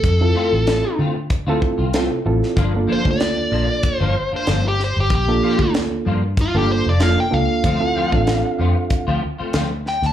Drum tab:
HH |x---x---x---x---|x---x---x---x---|x---x---x---x---|x---x---x---x---|
SD |----o-------o--o|----o-------o-o-|----o-------o---|----o-------o-oo|
BD |o-------o-o-----|o--o----o-------|o--o----o-------|o--o----o-------|